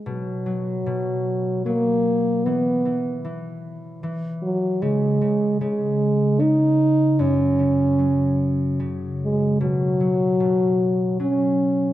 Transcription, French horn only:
\new Staff \with { instrumentName = "French horn" } { \clef bass \time 3/4 \key b \major \tempo 4 = 76 fis2 ais4 | b4 r4. fis8 | gis4 gis4 dis'4 | cis'2 r8 gis8 |
fis2 cis'4 | }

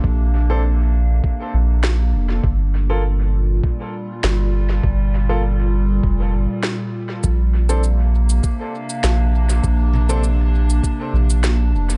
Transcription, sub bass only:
\new Staff \with { instrumentName = "Sub bass" } { \clef bass \time 4/4 \key bes \major \tempo 4 = 100 bes,,2 r8 bes,,4 f,,8 | g,,2 r4 g,,4 | g,,2 f,,8 g,,8 r4 | bes,,2 r4 bes,,4 |
bes,,2 r8 bes,,4 f,,8 | }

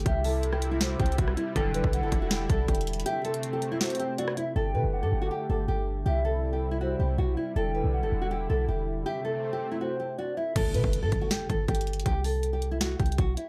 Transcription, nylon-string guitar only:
\new Staff \with { instrumentName = "Nylon-string guitar" } { \time 4/4 \key g \major \tempo 4 = 160 g'8 a'8. g'8 e'16 fis'8 g'8 fis'8 e'8 | a'8 b'8. a'8 fis'16 g'8 a'8 g'4 | g'8 a'8. g'8 e'16 fis'8 g'8 fis'8 e'8 | a'8 b'8. a'8 fis'16 g'8 a'8 g'4 |
g'8 a'8. g'8 e'16 fis'8 g'8 fis'8 e'8 | a'8 b'8. a'8 fis'16 g'8 a'8 g'4 | g'8 a'8. g'8 e'16 fis'8 g'8 fis'8 e'8 | a'8 b'8. a'8 fis'16 g'8 a'8 g'4 |
g'8 a'8. g'8 e'16 fis'8 g'8 fis'8 e'8 | }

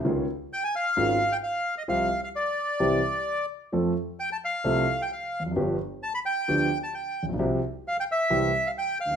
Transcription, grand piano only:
\new Staff \with { instrumentName = "Grand piano" } { \clef bass \time 4/4 \key c \mixolydian \tempo 4 = 131 <des, des ees aes des' f'>8 r4. <aes,, aes, ees aes des' f'>8 r4. | <c, c f g c' g'>8 r4. <c, c e g c' g'>8 r4. | <f, f a c' a'>8 r4. <c, c f a c' a'>8 r4 r32 e,32 f,32 ges,32 | <g,, g, f b d' g'>8 r4. <d, d f b d' g'>8 r4 r32 a,,32 bes,,32 b,,32 |
<c, c f g c' g'>8 r4. <c, c e g c' g'>8 r4 r32 d,32 ees,32 r32 | }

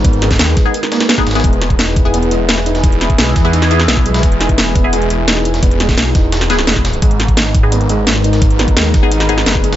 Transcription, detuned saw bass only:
\new Staff \with { instrumentName = "Detuned saw bass" } { \clef bass \time 4/4 \key e \lydian \tempo 4 = 172 gis,,4 dis,8 r2 gis,,8 | e,,2~ e,,8 e,,4. | e,,4 b,,8 e,4. b,,4 | e,,2~ e,,8 e,,4. |
e,,4 b,,8 e,,4. e,,4 | gis,,2~ gis,,8 gis,,4. | gis,,4 dis,8 gis,,4. fis,,4 | }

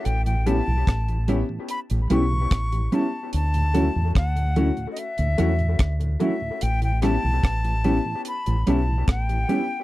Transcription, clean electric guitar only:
\new Staff \with { instrumentName = "Clean electric guitar" } { \time 4/4 \key a \mixolydian \tempo 4 = 73 r8 <g cis' e'>8 r8 <g cis' e'>8 r8 <g cis' e'>8 r8 <g cis' e'>8 | r8 <fis cis' e'>8 r8 <fis cis' e'>8 r8 <fis cis' e'>8 r8 <fis cis' e'>8 | r8 <g cis' e'>8 r8 <g cis' e'>8 r8 <g cis' e'>8 r8 <g cis' e'>8 | }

